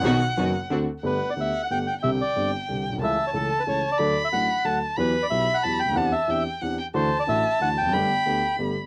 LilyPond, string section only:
\new Staff \with { instrumentName = "String section" } { \time 3/4 \key d \mixolydian \tempo 4 = 182 <b dis' fis'>8 r8 <b dis' fis'>8 r8 <c' d' fis'>8 r8 | \key g \major r2. | r2. | r2. |
r2. | r2. | r2. | r2. |
r2. | }